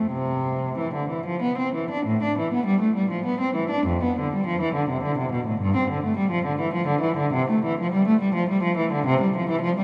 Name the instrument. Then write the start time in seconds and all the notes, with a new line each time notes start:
cello
Already playing: A3
0.12 C3
0.78 E3
0.94 D3
1.10 E3
1.26 F3
1.43 B3
1.59 C4
1.75 E3
1.91 D4
2.06 A2
2.23 D4
2.39 E3
2.53 B3
2.66 G3
2.81 A3
2.96 G3
3.10 F3
3.26 B3
3.41 C4
3.55 E3
3.70 D4
3.87 F2
4.04 B3
4.19 D3
4.34 G3
4.47 F3
4.61 E3
4.75 D3
4.89 C3
5.04 D3
5.18 C3
5.32 B2
5.47 A2
5.61 G2
5.76 C4
5.91 D3
6.04 A3
6.17 G3
6.31 F3
6.45 D3
6.60 E3
6.74 F3
6.88 D3
7.02 E3
7.17 D3
7.33 C3
7.50 A3
7.65 E3
7.81 F3
7.93 G3
8.08 A3
8.21 G3
8.35 F3
8.50 G3
8.63 F3
8.77 E3
8.92 D3
9.06 C3
9.21 G3
9.37 F3
9.49 E3
9.62 F3
9.77 G3